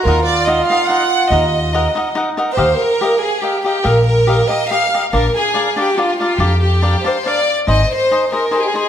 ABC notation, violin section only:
X:1
M:3/4
L:1/16
Q:1/4=142
K:Ebm
V:1 name="Violin section"
B2 =d2 e2 f2 g4 | e8 z4 | [K:Eb] c2 B4 A2 G2 G2 | B2 B4 e2 f3 z |
B2 A4 G2 F2 F2 | G2 G4 c2 d3 z | e2 c4 B2 A/2 G/2 A A2 |]